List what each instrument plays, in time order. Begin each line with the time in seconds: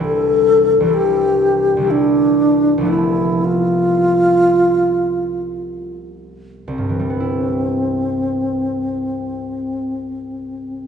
Already playing: harp C2 E3 G3 D4
0.00 harp E4, alto flute A4
0.80 harp C2 E3
0.85 harp G3 D4
0.90 harp E4, alto flute G4
1.77 harp C2 E3
1.82 harp G3 D4
1.87 alto flute D4, harp E4
2.78 harp C2 F3
2.82 harp A3 B3
2.88 harp E4, alto flute E4
3.45 alto flute F4
6.68 harp C2, alto flute C4
6.78 harp G2
6.89 harp E3
7.00 harp G3
7.10 harp B3
7.20 harp E4